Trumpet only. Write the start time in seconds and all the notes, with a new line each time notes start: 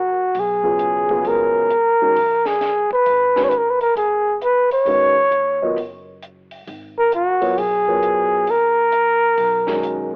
Already playing: F#4
0.40 G#4
1.28 A#4
2.47 G#4
2.93 B4
3.44 C#5
3.49 B4
3.58 A#4
3.71 B4
3.81 A#4
3.97 G#4
4.44 B4
4.73 C#5
6.98 A#4
7.15 F#4
7.58 G#4
8.50 A#4